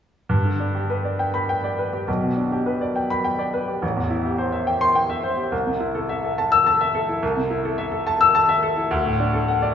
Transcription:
0.29 2.03 G2 medium
0.45 0.69 D3 soft
0.60 0.84 D4 soft
0.75 0.99 G4 soft
0.90 1.13 B4 soft
1.05 1.28 D5 soft
1.19 1.43 G5 soft
1.34 1.57 B5 medium
1.49 1.72 G5 medium
1.64 1.87 D5 soft
1.79 2.02 B4 soft
1.93 2.07 G4 soft
2.08 3.79 B1 medium
2.23 2.46 B2 soft
2.37 2.60 D4 soft
2.52 2.75 G4 soft
2.66 2.89 B4 soft
2.81 3.04 D5 soft
2.96 3.19 G5 soft
3.10 3.33 B5 medium
3.24 3.48 G5 medium
3.39 3.62 D5 soft
3.54 3.77 B4 soft
3.68 3.82 G4 soft
3.82 5.48 A1 medium
3.96 4.19 E2 soft
4.10 4.33 E4 medium
4.25 4.47 G4 soft
4.38 4.61 C5 soft
4.52 4.75 E5 soft
4.67 4.89 G5 medium
4.81 5.04 C6 medium
4.95 5.18 G5 medium
5.10 5.32 E5 medium
5.23 5.46 C5 medium
5.37 5.52 G4 soft
5.52 7.18 C2 medium
5.66 5.89 C3 soft
5.80 6.03 E4 soft
5.95 6.18 A4 medium
6.09 6.32 E5 medium
6.24 6.46 A4 soft
6.38 6.61 A5 medium
6.52 6.74 E6 medium
6.66 6.89 A5 medium
6.81 7.03 E5 medium
6.95 7.17 A4 medium
7.09 7.23 E4 soft
7.23 8.87 C2 medium
7.37 7.59 C3 soft
7.50 7.72 E4 medium
7.65 7.87 A4 medium
7.78 8.00 E5 medium
7.92 8.14 A4 medium
8.07 8.29 A5 medium
8.21 8.43 E6 medium
8.35 8.57 A5 medium
8.49 8.71 E5 medium
8.63 8.86 A4 medium
8.77 8.91 E4 soft
8.91 9.74 D2 medium
9.06 9.29 A2 soft
9.20 9.43 D4 medium
9.34 9.57 A4 medium
9.48 9.72 F#5 medium
9.62 9.74 D5 medium

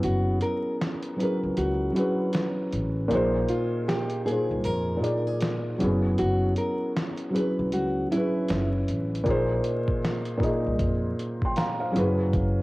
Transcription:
0.00 0.35 F#1 loud
0.00 0.88 F#3 medium
0.00 0.91 B3 medium
0.00 0.89 C#4 medium
0.00 0.89 E4 medium
0.00 0.90 G#4 medium
0.00 closed hi-hat medium
0.04 0.38 F#4 medium
0.41 0.76 A#4 medium
0.41 closed hi-hat medium
0.81 snare medium
0.81 closed hi-hat medium
1.02 closed hi-hat soft
1.16 1.66 F#3 medium
1.16 1.67 C#4 medium
1.16 1.68 E4 medium
1.16 1.40 B4 medium
1.16 closed hi-hat medium
1.21 1.69 G#4 medium
1.21 1.70 A#4 medium
1.43 1.55 C#2 medium
1.57 1.89 C#2 loud
1.57 1.92 F#4 medium
1.57 closed hi-hat medium
1.92 2.66 F#3 medium
1.92 2.66 C#4 medium
1.92 2.67 E4 medium
1.96 2.30 F#4 medium
1.96 2.68 G#4 medium
1.96 2.69 B4 medium
1.96 closed hi-hat medium
2.33 snare loud
2.33 closed hi-hat medium
2.73 3.04 A1 medium
2.73 closed hi-hat medium
3.08 3.42 A#1 loud
3.08 3.82 A#2 loud
3.08 3.82 A#3 medium
3.08 3.83 D#4 loud
3.08 closed hi-hat medium
3.13 3.84 G#4 medium
3.13 3.85 C5 loud
3.48 3.84 F4 medium
3.48 closed hi-hat medium
3.88 4.22 G4 medium
3.88 snare loud
3.88 closed hi-hat medium
4.10 closed hi-hat soft
4.25 4.75 A#2 medium
4.25 4.76 A#3 medium
4.25 4.77 D#4 medium
4.25 4.65 G#4 medium
4.25 closed hi-hat medium
4.30 4.78 G#4 medium
4.30 4.78 C5 medium
4.51 4.62 C2 medium
4.64 4.97 F2 medium
4.64 5.27 A#4 medium
4.64 closed hi-hat medium
4.97 5.72 A#2 medium
4.97 5.73 A#3 medium
4.97 5.74 D#4 medium
5.02 5.75 G#4 medium
5.02 5.76 D5 medium
5.02 closed hi-hat medium
5.27 5.61 G#4 medium
5.41 snare loud
5.41 closed hi-hat medium
5.78 6.12 F#1 loud
5.78 7.04 F#3 medium
5.78 7.05 C#4 medium
5.78 7.06 E4 medium
5.78 closed hi-hat medium
5.83 7.07 B3 medium
5.83 7.06 G#4 medium
6.18 6.50 F#1 loud
6.18 6.53 F#4 loud
6.18 closed hi-hat medium
6.56 6.92 A#4 medium
6.56 closed hi-hat medium
6.97 snare loud
6.97 closed hi-hat medium
7.17 closed hi-hat soft
7.30 7.81 F#3 medium
7.30 7.82 C#4 medium
7.30 7.83 E4 medium
7.35 7.84 G#4 medium
7.35 7.56 B4 medium
7.35 7.84 B4 medium
7.35 closed hi-hat medium
7.59 7.73 B1 medium
7.72 8.04 C#2 medium
7.72 8.07 F#4 medium
7.72 closed hi-hat medium
8.10 8.83 F#3 medium
8.10 8.84 C#4 medium
8.10 8.70 E4 medium
8.10 8.84 E4 medium
8.10 closed hi-hat medium
8.15 8.85 G#4 medium
8.15 8.86 B4 medium
8.48 8.81 F#1 medium
8.48 snare loud
8.48 closed hi-hat medium
8.88 9.20 A1 medium
8.88 closed hi-hat medium
9.15 closed hi-hat soft
9.24 9.58 A#1 loud
9.24 9.97 A#2 loud
9.24 9.98 A#3 medium
9.24 9.99 D#4 medium
9.24 kick loud
9.24 closed hi-hat medium
9.29 10.00 G#4 loud
9.29 10.00 C5 loud
9.64 closed hi-hat medium
9.88 kick medium
10.05 snare loud
10.05 closed hi-hat medium
10.26 closed hi-hat soft
10.38 10.89 A#2 medium
10.38 10.90 A#3 medium
10.38 10.90 D#4 medium
10.38 kick medium
10.43 10.91 G#4 medium
10.43 10.92 D#5 medium
10.43 closed hi-hat medium
10.67 10.78 C2 medium
10.79 11.12 F2 medium
10.79 kick loud
10.79 closed hi-hat medium
11.19 closed hi-hat medium
11.42 11.58 G5 medium
11.42 11.57 C6 medium
11.42 kick medium
11.56 11.78 F5 medium
11.56 11.79 A#5 medium
11.56 snare loud
11.56 closed hi-hat medium
11.80 12.17 C5 medium
11.80 12.17 F5 medium
11.92 12.62 F#3 medium
11.92 12.62 C#4 medium
11.92 12.62 E4 medium
11.96 12.28 F#1 loud
11.96 12.62 G#4 medium
11.96 12.62 B4 loud
11.96 closed hi-hat medium
12.33 12.62 F#1 loud
12.33 kick loud
12.33 closed hi-hat medium

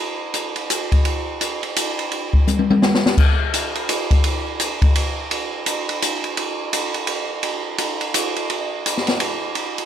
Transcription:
0.34 hi-hat pedal soft
0.34 ride medium
0.56 ride soft
0.70 hi-hat pedal medium
0.70 ride medium
0.92 kick soft
0.92 ride soft
1.05 ride medium
1.41 hi-hat pedal soft
1.41 ride medium
1.63 ride soft
1.76 hi-hat pedal medium
1.76 ride medium
1.99 ride soft
2.12 ride soft
2.33 kick soft
2.47 hi-hat pedal soft
2.47 high tom soft
2.59 high tom soft
2.70 high tom medium
2.82 snare medium
2.94 snare medium
3.06 snare medium
3.18 kick medium
3.18 crash medium
3.54 hi-hat pedal soft
3.54 ride medium
3.75 ride soft
3.89 hi-hat pedal medium
3.89 ride medium
4.11 kick medium
4.11 ride soft
4.24 ride medium
4.60 hi-hat pedal medium
4.60 ride medium
4.82 kick medium
4.82 ride soft
4.95 ride medium
5.31 ride medium
5.66 hi-hat pedal medium
5.66 ride medium
5.89 ride soft
6.02 hi-hat pedal medium
6.02 ride medium
6.24 ride soft
6.37 ride medium
6.73 hi-hat pedal medium
6.73 ride medium
6.94 ride soft
7.07 ride medium
7.43 ride medium
7.78 hi-hat pedal soft
7.78 ride medium
8.01 ride soft
8.14 hi-hat pedal medium
8.14 ride medium
8.36 ride soft
8.50 ride medium
8.86 hi-hat pedal medium
8.86 ride medium
8.97 snare soft
9.07 snare soft
9.07 ride soft
9.20 ride medium
9.55 ride medium
9.78 ride soft

